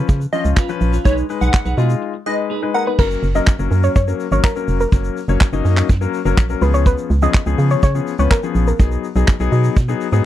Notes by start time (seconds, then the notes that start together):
Already playing: F3 C#4 B4
0.08 C#3, muted clean electric guitar stroke, kick, shaker
0.20 muted clean electric guitar stroke, closed hi-hat, shaker
0.33 F3 C#4 F4 D#5, open hi-hat, shaker
0.44 C#2, muted clean electric guitar stroke, closed hi-hat, shaker
0.56 C#4 F4 B4, kick, clap, shaker
0.68 F3 C#4 B4, muted clean electric guitar stroke, closed hi-hat, shaker
0.81 A#1, muted clean electric guitar stroke, open hi-hat, shaker
0.92 C#4 F4 B4, closed hi-hat, shaker
1.05 B1 G#3 D#4 G#4 B4 C#5, kick, shaker
1.17 muted clean electric guitar stroke, closed hi-hat, shaker
1.29 G#3 D#4 B4, muted clean electric guitar stroke, open hi-hat, shaker
1.41 B1 D#4 G#4 B4 F#5, closed hi-hat, shaker
1.54 kick, clap, shaker
1.65 B1 D#4 G#4 B4, closed hi-hat, shaker
1.77 B2 G#3 D#4 F4 G#4 B4, open hi-hat, shaker
1.90 muted clean electric guitar stroke, closed hi-hat, shaker
2.02 muted clean electric guitar stroke
2.14 muted clean electric guitar stroke
2.26 G#3 D#4 B4 D#5
2.38 muted clean electric guitar stroke
2.50 D#4 G#4 B4
2.62 G#3 D#4 B4, muted clean electric guitar stroke
2.74 A#4 F#5, muted clean electric guitar stroke
2.86 D#4 G#4 B4
2.98 F#1 F#3 A#3 C#4 A#4, kick, crash
3.11 shaker
3.23 F#1, open hi-hat, shaker
3.35 F#3 A#3 C#4 A#4 D#5, shaker
3.47 kick, clap, shaker
3.59 F#1 F#3 A#3 C#4 A#4, shaker
3.71 F#2, open hi-hat, shaker
3.83 C#5, shaker
3.96 F#2 C#5, kick, closed hi-hat, shaker
4.07 F#3 A#3 C#4 A#4, shaker
4.20 open hi-hat, shaker
4.31 G#1 F#3 A#3 C#4 A#4 C#5, shaker
4.44 A#4, kick, clap, closed hi-hat, shaker
4.56 F#3 A#3 C#4 A#4, shaker
4.68 F1, open hi-hat, shaker
4.80 A#4, shaker
4.92 F#1 F#3 A#3 C#4 A#4, kick, closed hi-hat, shaker
5.04 shaker
5.17 open hi-hat, shaker
5.28 F#1 F#3 A#3 C#4 C#5, shaker
5.41 kick, clap, shaker
5.53 F#1 F#3 A#3 C#4 D#4, shaker
5.65 F#2, open hi-hat, shaker
5.77 clap, shaker
5.89 F#2, kick, closed hi-hat, shaker
6.01 F#3 A#3 C#4 A#4, shaker
6.14 open hi-hat, shaker
6.25 F#1 F#3 A#3 C#4 A#4, shaker
6.37 A#1, kick, clap, shaker
6.50 F#3 A#3 C#4 A#4, shaker
6.61 C#2 F3 B3 C#4 G#4 B4, open hi-hat, shaker
6.74 C#5, shaker
6.86 B4, kick, closed hi-hat, shaker
6.98 shaker
7.10 C#2, open hi-hat, shaker
7.22 F3 B3 C#4 G#4 D#5, shaker
7.34 kick, clap, shaker
7.46 C#2 F3 B3 C#4 G#4, shaker
7.58 C#3, open hi-hat, shaker
7.70 C#5, shaker
7.83 C#3 C#5, kick, closed hi-hat, shaker
7.95 F3 B3 C#4 G#4, shaker
8.07 open hi-hat, shaker
8.19 C#2 F3 B3 C#4 B4 C#5, shaker
8.31 A#4, kick, clap, closed hi-hat, shaker
8.43 F3 B3 C#4 G#4, shaker
8.55 A#1, open hi-hat, shaker
8.67 A#4, shaker
8.79 B1 F#3 B3 D#4 G#4, kick, closed hi-hat, shaker
8.92 shaker
9.04 open hi-hat, shaker
9.16 B1 F#3 B3 D#4 G#4, shaker
9.28 kick, clap, closed hi-hat, shaker
9.40 B1 F#3 B3 D#4 G#4, shaker
9.52 B2, open hi-hat, shaker
9.64 shaker
9.76 B2, kick, closed hi-hat, shaker
9.88 F#3 B3 D#4 G#4, shaker
10.01 open hi-hat, shaker
10.12 G#2 F#3 B3 D#4 G#4, shaker